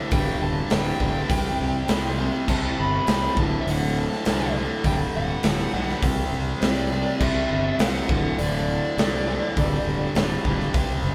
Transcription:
Already playing: D2 A2 D3
0.11 D1 G2 D3 G3 G5, kick, open hi-hat
0.42 D1 A5
0.70 D1 G2 D3 G3 G5, snare, open hi-hat
1.00 D1 G2 D3 G3, kick
1.29 C2 C3 G3 C4, kick, open hi-hat
1.60 C2
1.88 C2 C3 G3 C4, snare, open hi-hat
2.18 C3 G3 C4
2.47 C2 C3 G3 C4 A5, kick, crash
2.78 G1 B5
3.06 C2 C3 G3 C4 B5, snare, open hi-hat
3.36 D1 D2 A2 D3 A5, kick
3.61 E5
3.67 D1 D2 A2 D3 F#5, open hi-hat
4.00 A5
4.12 snare
4.25 C2 D2 A2 D3, snare, open hi-hat
4.56 D2 A2 D3
4.84 D1 G2 D3 G3 G5, kick, open hi-hat
5.15 D1 F#5
5.43 D1 G2 D3 G3, snare, open hi-hat
5.73 B1 G2 D3 G3
5.89 snare
6.02 C2 C3 G3 C4, kick, open hi-hat
6.33 C2
6.61 C2 C3 G3 C4 D5, snare, open hi-hat
6.91 C3 G3 C4
7.21 C2 C3 G3 C4 E5, kick, crash
7.51 G1
7.78 C2 C3 G3 C4 F#5, snare, open hi-hat
8.09 D1 D2 A2 D3, kick
8.38 D1 D2 A2 D3 D5, open hi-hat
8.97 C2 D2 A2 D3, snare, open hi-hat
9.27 D2 A2 D3
9.57 D1 G2 D3 G3, kick, open hi-hat
9.85 D1
10.15 D1 G2 D3 G3, snare, open hi-hat
10.45 D1 G2 D3 G3, kick
10.60 snare
10.74 C2 C3 G3 C4, kick, open hi-hat
11.03 F#1

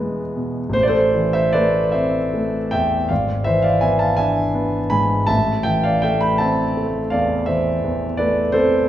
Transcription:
Already playing: B2 E3 G#3 B3
0.36 B2
0.70 A1 C5
0.83 D5
0.88 A4 C5
1.15 E3
1.33 C5 E5
1.53 A3 B4 D5
1.92 C4 C5 E5
2.34 A3
2.71 E2 E5 G5
3.09 G#1 D5 F5
3.44 E3 C5 E5
3.62 D5 F5
3.81 B3 E5 G#5
3.99 F5 A5
4.17 D4 E5 G#5
4.55 B3
4.90 G#2 G#5 B5
5.27 A1 E5 A5
5.63 E3 E5 G5
5.83 D5 F5
6.02 A3 E5 G5
6.21 G5 B5
6.38 C4 E5 A5
6.77 A3
7.10 E2 D5 F5
7.46 E3 C5 E5
7.84 E2
8.17 A3 B4 D5
8.52 C4 A4 C5

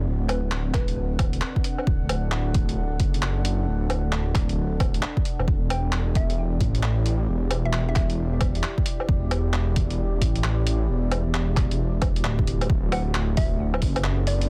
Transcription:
Already playing: C4 D4 A4 F#5
0.07 D1
0.28 B4, closed hi-hat, low woodblock
0.43 D1
0.51 clap
0.74 B4, kick, clap, closed hi-hat
0.88 closed hi-hat
1.19 kick, closed hi-hat, low woodblock
1.33 closed hi-hat
1.41 clap
1.56 kick
1.64 closed hi-hat
1.78 low woodblock
1.87 D1 D5, kick
2.09 closed hi-hat, low woodblock
2.32 clap
2.54 kick, closed hi-hat
2.69 closed hi-hat
3.00 F#1, kick, closed hi-hat
3.14 closed hi-hat
3.22 clap
3.45 closed hi-hat
3.68 D1
3.90 closed hi-hat, low woodblock
4.04 D1
4.12 clap
4.35 kick, clap, closed hi-hat
4.49 closed hi-hat
4.80 D1, kick, closed hi-hat, low woodblock
4.94 closed hi-hat
5.02 clap
5.17 kick
5.25 closed hi-hat
5.39 E1, low woodblock
5.48 E1 E4 G4, kick
5.70 G5, closed hi-hat, low woodblock
5.92 clap
6.15 E5, kick, closed hi-hat
6.30 closed hi-hat
6.61 A1, kick, closed hi-hat
6.75 closed hi-hat
6.83 clap
7.06 closed hi-hat
7.29 E1
7.51 closed hi-hat, low woodblock
7.65 E1 E5
7.73 E5, clap
7.89 E5
7.96 E5, kick, clap, closed hi-hat
8.10 closed hi-hat
8.41 kick, closed hi-hat, low woodblock
8.55 closed hi-hat
8.63 clap
8.78 kick
8.86 closed hi-hat
9.00 low woodblock
9.09 E1, kick
9.31 closed hi-hat, low woodblock
9.53 clap
9.76 kick, closed hi-hat
9.90 closed hi-hat
10.21 A1, kick, closed hi-hat
10.36 closed hi-hat
10.44 clap
10.67 closed hi-hat
10.89 E1
11.12 closed hi-hat, low woodblock
11.26 E1
11.34 clap
11.57 kick, clap, closed hi-hat
11.71 closed hi-hat
12.02 kick, closed hi-hat, low woodblock
12.16 closed hi-hat
12.24 D1, clap
12.39 kick
12.47 closed hi-hat
12.61 closed hi-hat, low woodblock
12.69 D1 C4 D4 A4 F#5, kick
12.92 F#5, open hi-hat, low woodblock
13.15 clap
13.37 E5, kick, open hi-hat
13.74 low woodblock
13.82 F#1, kick, open hi-hat
13.96 closed hi-hat, low woodblock
14.04 clap
14.27 D5, open hi-hat
14.41 closed hi-hat

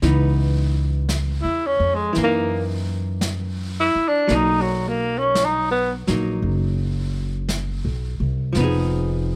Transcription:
0.02 C#2 E3 B3 D#4, brush sweep, snare
1.09 brush sweep, snare, hi-hat pedal
1.42 E2 E4
1.66 C#4
1.80 F2
1.95 G#3
2.13 F#2 E3, brush sweep, snare
2.18 A#3
2.23 A#3 D#4
3.21 brush sweep, snare, hi-hat pedal
3.80 E4
3.96 muted upright bass stroke
4.08 D4
4.27 B1 F#3 A#3, brush sweep, snare
4.32 D#4
4.61 F#3
4.88 A#3
5.19 C#4
5.35 brush sweep, snare, hi-hat pedal
5.44 D#4
5.71 B3
6.07 A#1 F#3 A#3 D#4, snare
6.42 F#1, brush sweep
7.49 brush sweep, snare, hi-hat pedal
7.85 B1
8.20 C2
8.53 F1 F3, brush sweep, snare
8.57 B3 D#4
8.64 G#4

